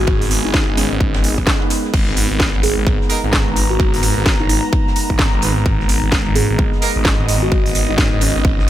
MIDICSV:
0, 0, Header, 1, 7, 480
1, 0, Start_track
1, 0, Key_signature, 5, "minor"
1, 0, Tempo, 465116
1, 77, Time_signature, 4, 2, 24, 8
1, 8973, End_track
2, 0, Start_track
2, 0, Title_t, "Analog synth pad"
2, 0, Program_c, 0, 89
2, 0, Note_on_c, 0, 59, 81
2, 0, Note_on_c, 0, 68, 95
2, 2810, Note_on_c, 0, 82, 88
2, 2840, Note_off_c, 0, 68, 0
2, 6652, Note_on_c, 0, 75, 91
2, 6679, Note_off_c, 0, 82, 0
2, 8973, Note_off_c, 0, 59, 0
2, 8973, Note_off_c, 0, 75, 0
2, 8973, End_track
3, 0, Start_track
3, 0, Title_t, "Ambient pad"
3, 0, Program_c, 1, 92
3, 0, Note_on_c, 1, 56, 87
3, 0, Note_on_c, 1, 63, 75
3, 0, Note_on_c, 1, 70, 76
3, 0, Note_on_c, 1, 75, 97
3, 1988, Note_off_c, 1, 75, 0
3, 1999, Note_on_c, 1, 71, 94
3, 5828, Note_off_c, 1, 71, 0
3, 5838, Note_on_c, 1, 75, 89
3, 8973, Note_off_c, 1, 56, 0
3, 8973, Note_off_c, 1, 63, 0
3, 8973, Note_off_c, 1, 70, 0
3, 8973, Note_off_c, 1, 75, 0
3, 8973, End_track
4, 0, Start_track
4, 0, Title_t, "Horn section"
4, 0, Program_c, 2, 61
4, 3198, Note_on_c, 2, 58, 90
4, 3198, Note_on_c, 2, 59, 93
4, 3198, Note_on_c, 2, 63, 86
4, 3198, Note_on_c, 2, 68, 86
4, 3198, Note_on_c, 2, 70, 98
4, 3299, Note_off_c, 2, 58, 0
4, 3299, Note_off_c, 2, 59, 0
4, 3299, Note_off_c, 2, 63, 0
4, 3299, Note_off_c, 2, 68, 0
4, 3299, Note_off_c, 2, 70, 0
4, 5598, Note_on_c, 2, 59, 79
4, 5598, Note_on_c, 2, 68, 68
4, 5598, Note_on_c, 2, 71, 78
4, 5599, Note_on_c, 2, 63, 72
4, 5699, Note_off_c, 2, 59, 0
4, 5699, Note_off_c, 2, 63, 0
4, 5699, Note_off_c, 2, 68, 0
4, 5699, Note_off_c, 2, 71, 0
4, 7038, Note_on_c, 2, 58, 102
4, 7038, Note_on_c, 2, 59, 97
4, 7038, Note_on_c, 2, 63, 83
4, 7038, Note_on_c, 2, 68, 85
4, 7038, Note_on_c, 2, 70, 111
4, 7139, Note_off_c, 2, 58, 0
4, 7139, Note_off_c, 2, 59, 0
4, 7139, Note_off_c, 2, 63, 0
4, 7139, Note_off_c, 2, 68, 0
4, 7139, Note_off_c, 2, 70, 0
4, 8973, End_track
5, 0, Start_track
5, 0, Title_t, "Kalimba"
5, 0, Program_c, 3, 108
5, 0, Note_on_c, 3, 66, 91
5, 124, Note_off_c, 3, 66, 0
5, 463, Note_on_c, 3, 63, 92
5, 604, Note_off_c, 3, 63, 0
5, 798, Note_on_c, 3, 61, 93
5, 891, Note_off_c, 3, 61, 0
5, 943, Note_on_c, 3, 61, 73
5, 1004, Note_off_c, 3, 61, 0
5, 2718, Note_on_c, 3, 68, 98
5, 2893, Note_off_c, 3, 68, 0
5, 3823, Note_on_c, 3, 66, 93
5, 3964, Note_off_c, 3, 66, 0
5, 4544, Note_on_c, 3, 63, 91
5, 4619, Note_off_c, 3, 63, 0
5, 4638, Note_on_c, 3, 63, 98
5, 5023, Note_off_c, 3, 63, 0
5, 6558, Note_on_c, 3, 68, 98
5, 6733, Note_off_c, 3, 68, 0
5, 7663, Note_on_c, 3, 66, 97
5, 7804, Note_off_c, 3, 66, 0
5, 8143, Note_on_c, 3, 63, 95
5, 8284, Note_off_c, 3, 63, 0
5, 8479, Note_on_c, 3, 61, 97
5, 8571, Note_off_c, 3, 61, 0
5, 8623, Note_on_c, 3, 61, 75
5, 8684, Note_off_c, 3, 61, 0
5, 8973, End_track
6, 0, Start_track
6, 0, Title_t, "Detuned saw bass"
6, 0, Program_c, 4, 39
6, 78, Note_on_c, 4, 32, 99
6, 303, Note_off_c, 4, 32, 0
6, 318, Note_on_c, 4, 32, 98
6, 439, Note_off_c, 4, 32, 0
6, 463, Note_on_c, 4, 32, 101
6, 680, Note_off_c, 4, 32, 0
6, 703, Note_on_c, 4, 32, 98
6, 920, Note_off_c, 4, 32, 0
6, 943, Note_on_c, 4, 32, 97
6, 1400, Note_off_c, 4, 32, 0
6, 1423, Note_on_c, 4, 35, 94
6, 1503, Note_off_c, 4, 35, 0
6, 1998, Note_on_c, 4, 32, 93
6, 2223, Note_off_c, 4, 32, 0
6, 2238, Note_on_c, 4, 32, 101
6, 2360, Note_off_c, 4, 32, 0
6, 2383, Note_on_c, 4, 32, 100
6, 2600, Note_off_c, 4, 32, 0
6, 2623, Note_on_c, 4, 32, 96
6, 2840, Note_off_c, 4, 32, 0
6, 2863, Note_on_c, 4, 32, 98
6, 3079, Note_off_c, 4, 32, 0
6, 3343, Note_on_c, 4, 32, 93
6, 3560, Note_off_c, 4, 32, 0
6, 3583, Note_on_c, 4, 32, 96
6, 3903, Note_off_c, 4, 32, 0
6, 3918, Note_on_c, 4, 32, 92
6, 4142, Note_off_c, 4, 32, 0
6, 4159, Note_on_c, 4, 32, 106
6, 4280, Note_off_c, 4, 32, 0
6, 4303, Note_on_c, 4, 32, 103
6, 4520, Note_off_c, 4, 32, 0
6, 4543, Note_on_c, 4, 32, 99
6, 4760, Note_off_c, 4, 32, 0
6, 5263, Note_on_c, 4, 32, 94
6, 5480, Note_off_c, 4, 32, 0
6, 5504, Note_on_c, 4, 32, 94
6, 5583, Note_off_c, 4, 32, 0
6, 5599, Note_on_c, 4, 32, 100
6, 5823, Note_off_c, 4, 32, 0
6, 5838, Note_on_c, 4, 32, 94
6, 6063, Note_off_c, 4, 32, 0
6, 6078, Note_on_c, 4, 32, 96
6, 6200, Note_off_c, 4, 32, 0
6, 6223, Note_on_c, 4, 32, 97
6, 6440, Note_off_c, 4, 32, 0
6, 6463, Note_on_c, 4, 32, 93
6, 6680, Note_off_c, 4, 32, 0
6, 6703, Note_on_c, 4, 32, 98
6, 6920, Note_off_c, 4, 32, 0
6, 7183, Note_on_c, 4, 32, 97
6, 7400, Note_off_c, 4, 32, 0
6, 7423, Note_on_c, 4, 32, 95
6, 7743, Note_off_c, 4, 32, 0
6, 7758, Note_on_c, 4, 32, 94
6, 7983, Note_off_c, 4, 32, 0
6, 7998, Note_on_c, 4, 32, 100
6, 8119, Note_off_c, 4, 32, 0
6, 8143, Note_on_c, 4, 32, 100
6, 8360, Note_off_c, 4, 32, 0
6, 8383, Note_on_c, 4, 32, 100
6, 8600, Note_off_c, 4, 32, 0
6, 8624, Note_on_c, 4, 32, 101
6, 8840, Note_off_c, 4, 32, 0
6, 8863, Note_on_c, 4, 32, 104
6, 8973, Note_off_c, 4, 32, 0
6, 8973, End_track
7, 0, Start_track
7, 0, Title_t, "Drums"
7, 73, Note_on_c, 9, 51, 95
7, 78, Note_on_c, 9, 36, 108
7, 176, Note_off_c, 9, 51, 0
7, 181, Note_off_c, 9, 36, 0
7, 223, Note_on_c, 9, 46, 59
7, 224, Note_on_c, 9, 38, 44
7, 318, Note_off_c, 9, 46, 0
7, 318, Note_on_c, 9, 46, 112
7, 325, Note_on_c, 9, 51, 64
7, 328, Note_off_c, 9, 38, 0
7, 421, Note_off_c, 9, 46, 0
7, 428, Note_off_c, 9, 51, 0
7, 554, Note_on_c, 9, 38, 118
7, 557, Note_on_c, 9, 51, 82
7, 558, Note_off_c, 9, 38, 0
7, 558, Note_on_c, 9, 36, 116
7, 558, Note_on_c, 9, 38, 124
7, 660, Note_off_c, 9, 51, 0
7, 661, Note_off_c, 9, 36, 0
7, 661, Note_off_c, 9, 38, 0
7, 788, Note_on_c, 9, 38, 99
7, 798, Note_on_c, 9, 46, 108
7, 802, Note_on_c, 9, 51, 89
7, 891, Note_off_c, 9, 38, 0
7, 902, Note_off_c, 9, 46, 0
7, 905, Note_off_c, 9, 51, 0
7, 941, Note_on_c, 9, 51, 39
7, 1038, Note_on_c, 9, 36, 107
7, 1044, Note_off_c, 9, 51, 0
7, 1044, Note_on_c, 9, 51, 62
7, 1141, Note_off_c, 9, 36, 0
7, 1147, Note_off_c, 9, 51, 0
7, 1180, Note_on_c, 9, 51, 82
7, 1184, Note_on_c, 9, 38, 108
7, 1278, Note_on_c, 9, 46, 93
7, 1283, Note_off_c, 9, 51, 0
7, 1287, Note_off_c, 9, 38, 0
7, 1288, Note_on_c, 9, 51, 38
7, 1381, Note_off_c, 9, 46, 0
7, 1392, Note_off_c, 9, 51, 0
7, 1422, Note_on_c, 9, 51, 67
7, 1423, Note_on_c, 9, 36, 56
7, 1514, Note_on_c, 9, 38, 119
7, 1518, Note_off_c, 9, 36, 0
7, 1518, Note_off_c, 9, 51, 0
7, 1518, Note_on_c, 9, 36, 115
7, 1518, Note_on_c, 9, 51, 85
7, 1521, Note_off_c, 9, 38, 0
7, 1521, Note_on_c, 9, 38, 108
7, 1621, Note_off_c, 9, 36, 0
7, 1621, Note_off_c, 9, 51, 0
7, 1625, Note_off_c, 9, 38, 0
7, 1670, Note_on_c, 9, 51, 35
7, 1756, Note_on_c, 9, 38, 105
7, 1757, Note_on_c, 9, 46, 111
7, 1763, Note_off_c, 9, 51, 0
7, 1763, Note_on_c, 9, 51, 75
7, 1859, Note_off_c, 9, 38, 0
7, 1861, Note_off_c, 9, 46, 0
7, 1866, Note_off_c, 9, 51, 0
7, 1902, Note_on_c, 9, 38, 47
7, 1997, Note_on_c, 9, 49, 76
7, 1998, Note_on_c, 9, 36, 110
7, 2001, Note_on_c, 9, 51, 100
7, 2005, Note_off_c, 9, 38, 0
7, 2101, Note_off_c, 9, 36, 0
7, 2101, Note_off_c, 9, 49, 0
7, 2104, Note_off_c, 9, 51, 0
7, 2141, Note_on_c, 9, 38, 44
7, 2235, Note_on_c, 9, 51, 68
7, 2237, Note_on_c, 9, 46, 109
7, 2244, Note_off_c, 9, 38, 0
7, 2338, Note_off_c, 9, 51, 0
7, 2341, Note_off_c, 9, 46, 0
7, 2473, Note_on_c, 9, 51, 83
7, 2474, Note_on_c, 9, 38, 126
7, 2478, Note_on_c, 9, 36, 115
7, 2479, Note_off_c, 9, 38, 0
7, 2479, Note_on_c, 9, 38, 109
7, 2577, Note_off_c, 9, 51, 0
7, 2581, Note_off_c, 9, 36, 0
7, 2582, Note_off_c, 9, 38, 0
7, 2630, Note_on_c, 9, 51, 44
7, 2713, Note_off_c, 9, 51, 0
7, 2713, Note_on_c, 9, 51, 74
7, 2718, Note_on_c, 9, 46, 110
7, 2817, Note_off_c, 9, 51, 0
7, 2821, Note_off_c, 9, 46, 0
7, 2958, Note_on_c, 9, 36, 122
7, 2967, Note_on_c, 9, 51, 87
7, 3061, Note_off_c, 9, 36, 0
7, 3071, Note_off_c, 9, 51, 0
7, 3108, Note_on_c, 9, 38, 48
7, 3192, Note_on_c, 9, 51, 77
7, 3198, Note_on_c, 9, 46, 106
7, 3211, Note_off_c, 9, 38, 0
7, 3295, Note_off_c, 9, 51, 0
7, 3301, Note_off_c, 9, 46, 0
7, 3344, Note_on_c, 9, 51, 38
7, 3434, Note_on_c, 9, 38, 121
7, 3438, Note_on_c, 9, 36, 112
7, 3440, Note_off_c, 9, 38, 0
7, 3440, Note_on_c, 9, 38, 112
7, 3441, Note_off_c, 9, 51, 0
7, 3441, Note_on_c, 9, 51, 81
7, 3541, Note_off_c, 9, 36, 0
7, 3543, Note_off_c, 9, 38, 0
7, 3545, Note_off_c, 9, 51, 0
7, 3677, Note_on_c, 9, 46, 109
7, 3678, Note_on_c, 9, 38, 42
7, 3681, Note_on_c, 9, 51, 71
7, 3781, Note_off_c, 9, 38, 0
7, 3781, Note_off_c, 9, 46, 0
7, 3784, Note_off_c, 9, 51, 0
7, 3918, Note_on_c, 9, 36, 112
7, 3926, Note_on_c, 9, 51, 92
7, 4021, Note_off_c, 9, 36, 0
7, 4029, Note_off_c, 9, 51, 0
7, 4063, Note_on_c, 9, 46, 64
7, 4064, Note_on_c, 9, 38, 50
7, 4156, Note_on_c, 9, 51, 69
7, 4157, Note_off_c, 9, 46, 0
7, 4157, Note_on_c, 9, 46, 116
7, 4167, Note_off_c, 9, 38, 0
7, 4259, Note_off_c, 9, 51, 0
7, 4260, Note_off_c, 9, 46, 0
7, 4394, Note_on_c, 9, 38, 127
7, 4398, Note_on_c, 9, 36, 124
7, 4402, Note_on_c, 9, 51, 88
7, 4405, Note_off_c, 9, 38, 0
7, 4405, Note_on_c, 9, 38, 110
7, 4501, Note_off_c, 9, 36, 0
7, 4506, Note_off_c, 9, 51, 0
7, 4508, Note_off_c, 9, 38, 0
7, 4635, Note_on_c, 9, 51, 74
7, 4638, Note_on_c, 9, 46, 114
7, 4738, Note_off_c, 9, 51, 0
7, 4741, Note_off_c, 9, 46, 0
7, 4878, Note_on_c, 9, 36, 127
7, 4878, Note_on_c, 9, 51, 90
7, 4981, Note_off_c, 9, 36, 0
7, 4982, Note_off_c, 9, 51, 0
7, 5028, Note_on_c, 9, 38, 60
7, 5117, Note_on_c, 9, 46, 99
7, 5120, Note_on_c, 9, 51, 65
7, 5131, Note_off_c, 9, 38, 0
7, 5221, Note_off_c, 9, 46, 0
7, 5223, Note_off_c, 9, 51, 0
7, 5263, Note_on_c, 9, 36, 67
7, 5354, Note_on_c, 9, 38, 122
7, 5354, Note_on_c, 9, 51, 96
7, 5358, Note_off_c, 9, 36, 0
7, 5358, Note_off_c, 9, 38, 0
7, 5358, Note_on_c, 9, 36, 117
7, 5358, Note_on_c, 9, 38, 109
7, 5457, Note_off_c, 9, 51, 0
7, 5461, Note_off_c, 9, 36, 0
7, 5461, Note_off_c, 9, 38, 0
7, 5500, Note_on_c, 9, 51, 40
7, 5591, Note_off_c, 9, 51, 0
7, 5591, Note_on_c, 9, 51, 67
7, 5598, Note_on_c, 9, 46, 116
7, 5694, Note_off_c, 9, 51, 0
7, 5701, Note_off_c, 9, 46, 0
7, 5743, Note_on_c, 9, 38, 48
7, 5838, Note_on_c, 9, 36, 110
7, 5841, Note_on_c, 9, 51, 87
7, 5846, Note_off_c, 9, 38, 0
7, 5941, Note_off_c, 9, 36, 0
7, 5944, Note_off_c, 9, 51, 0
7, 5985, Note_on_c, 9, 38, 48
7, 6078, Note_on_c, 9, 46, 112
7, 6079, Note_on_c, 9, 51, 74
7, 6088, Note_off_c, 9, 38, 0
7, 6181, Note_off_c, 9, 46, 0
7, 6183, Note_off_c, 9, 51, 0
7, 6314, Note_on_c, 9, 38, 123
7, 6316, Note_off_c, 9, 38, 0
7, 6316, Note_on_c, 9, 38, 127
7, 6318, Note_on_c, 9, 36, 123
7, 6319, Note_on_c, 9, 51, 81
7, 6419, Note_off_c, 9, 38, 0
7, 6421, Note_off_c, 9, 36, 0
7, 6422, Note_off_c, 9, 51, 0
7, 6461, Note_on_c, 9, 51, 41
7, 6558, Note_on_c, 9, 46, 116
7, 6560, Note_off_c, 9, 51, 0
7, 6560, Note_on_c, 9, 51, 78
7, 6661, Note_off_c, 9, 46, 0
7, 6663, Note_off_c, 9, 51, 0
7, 6798, Note_on_c, 9, 36, 126
7, 6798, Note_on_c, 9, 51, 81
7, 6901, Note_off_c, 9, 36, 0
7, 6901, Note_off_c, 9, 51, 0
7, 6939, Note_on_c, 9, 38, 43
7, 7038, Note_on_c, 9, 46, 108
7, 7039, Note_on_c, 9, 51, 69
7, 7042, Note_off_c, 9, 38, 0
7, 7141, Note_off_c, 9, 46, 0
7, 7142, Note_off_c, 9, 51, 0
7, 7178, Note_on_c, 9, 51, 37
7, 7270, Note_on_c, 9, 38, 121
7, 7274, Note_off_c, 9, 38, 0
7, 7274, Note_on_c, 9, 38, 126
7, 7275, Note_off_c, 9, 51, 0
7, 7275, Note_on_c, 9, 51, 90
7, 7278, Note_on_c, 9, 36, 116
7, 7377, Note_off_c, 9, 38, 0
7, 7378, Note_off_c, 9, 51, 0
7, 7381, Note_off_c, 9, 36, 0
7, 7511, Note_on_c, 9, 38, 43
7, 7518, Note_on_c, 9, 46, 119
7, 7522, Note_on_c, 9, 51, 66
7, 7614, Note_off_c, 9, 38, 0
7, 7621, Note_off_c, 9, 46, 0
7, 7625, Note_off_c, 9, 51, 0
7, 7757, Note_on_c, 9, 51, 88
7, 7758, Note_on_c, 9, 36, 110
7, 7860, Note_off_c, 9, 51, 0
7, 7861, Note_off_c, 9, 36, 0
7, 7903, Note_on_c, 9, 46, 66
7, 7906, Note_on_c, 9, 38, 45
7, 7998, Note_off_c, 9, 46, 0
7, 7998, Note_on_c, 9, 46, 113
7, 8006, Note_on_c, 9, 51, 73
7, 8009, Note_off_c, 9, 38, 0
7, 8101, Note_off_c, 9, 46, 0
7, 8109, Note_off_c, 9, 51, 0
7, 8234, Note_on_c, 9, 38, 118
7, 8234, Note_on_c, 9, 51, 89
7, 8238, Note_off_c, 9, 38, 0
7, 8238, Note_on_c, 9, 36, 119
7, 8238, Note_on_c, 9, 38, 107
7, 8337, Note_off_c, 9, 51, 0
7, 8341, Note_off_c, 9, 36, 0
7, 8342, Note_off_c, 9, 38, 0
7, 8471, Note_on_c, 9, 51, 73
7, 8478, Note_on_c, 9, 46, 115
7, 8575, Note_off_c, 9, 51, 0
7, 8581, Note_off_c, 9, 46, 0
7, 8714, Note_on_c, 9, 51, 94
7, 8718, Note_on_c, 9, 36, 127
7, 8817, Note_off_c, 9, 51, 0
7, 8821, Note_off_c, 9, 36, 0
7, 8864, Note_on_c, 9, 38, 58
7, 8967, Note_off_c, 9, 38, 0
7, 8973, End_track
0, 0, End_of_file